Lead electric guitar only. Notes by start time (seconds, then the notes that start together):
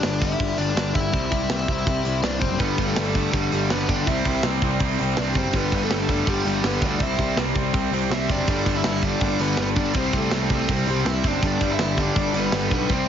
Already playing: D4 D5
0.21 E4 E5
0.58 D4 D5
0.94 E4 E5
2.23 D4 D5
2.40 C4 C5
2.59 B3 B4
2.86 A3 A4
3.32 G3 G4
3.71 B3 B4
3.89 D4 D5
4.07 E4 E5
5.18 D4 D5
5.37 C4 C5
5.56 B3 B4
5.83 A3 A4
6.29 G3 G4
6.66 B3 B4
6.85 D4 D5
7.02 E4 E5
8.12 E4 E5
8.31 D4 D5
8.49 D4 D5
8.76 E4 E5
9.04 D4 D5
9.40 B3 B4
9.61 B3 B4
9.76 D4 D5
9.95 C4 C5
10.15 A3 A4
10.68 G3
10.72 G4
10.88 G3 G4
11.06 E4 E5
11.24 D4 D5
11.43 D4 D5
11.71 E4 E5
12.00 D4 D5
12.37 B3 B4
12.73 B3 B4
12.92 C4 C5